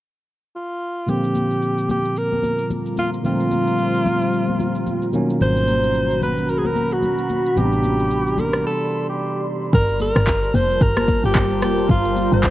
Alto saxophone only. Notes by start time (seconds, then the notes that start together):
0.56 F4
1.09 G4
1.91 G4
2.18 A#4
2.99 F4
3.26 F4
5.42 C5
6.23 B4
6.50 A#4
6.58 G#4
6.66 A#4
6.93 F#4
7.58 G4
8.39 A#4
8.66 A4
9.09 G4
9.74 A#4
10.01 A#4
10.55 C5
10.83 A#4
11.25 G4
11.64 G4
11.91 F4
12.33 C5